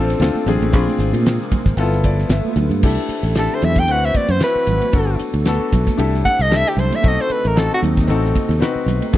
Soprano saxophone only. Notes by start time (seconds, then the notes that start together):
3.39 A4
3.55 C5
3.65 E5
3.80 G5
3.91 F#5
4.06 E5
4.16 D5
4.32 C5
4.44 B4
6.25 F#5
6.42 D#5
6.56 E5
6.69 G4
6.80 C5
6.96 E5
7.08 D#5
7.21 C5
7.32 B4
7.47 A#4
7.59 A4
7.74 F#4